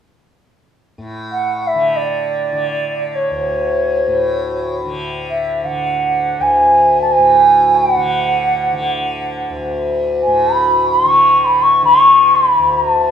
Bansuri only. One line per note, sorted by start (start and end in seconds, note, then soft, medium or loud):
1.32 1.68 F#5 medium
1.67 1.98 E5 medium
1.96 3.17 D5 medium
3.15 4.79 C#5 medium
5.30 5.66 E5 medium
5.65 6.43 F#5 medium
6.41 7.01 G#5 medium
7.01 7.14 A5 medium
7.12 7.77 G#5 medium
7.75 7.94 G5 medium
7.94 9.53 F#5 medium
10.22 10.55 G#5 medium
10.53 10.90 B5 medium
10.91 11.09 C6 medium
11.09 11.46 C#6 medium
11.45 11.64 B5 medium
11.62 11.84 C#6 medium
11.85 12.37 C#6 loud
12.35 12.74 B5 medium
12.73 12.92 A#5 medium
12.92 13.11 A5 medium